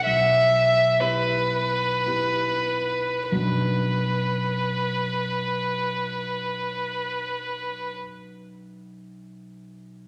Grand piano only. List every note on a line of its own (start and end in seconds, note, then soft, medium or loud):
0.06 0.97 B1 soft
1.00 2.02 B3 soft
1.00 2.02 E4 soft
1.00 2.02 G4 soft
2.06 3.27 B3 soft
2.06 3.27 E4 soft
2.06 3.27 G4 soft
3.32 7.97 B1 soft
3.32 7.97 F#2 soft
3.32 7.97 F#3 soft
3.32 7.97 B3 soft
3.32 7.98 D4 soft
3.32 7.98 F#4 soft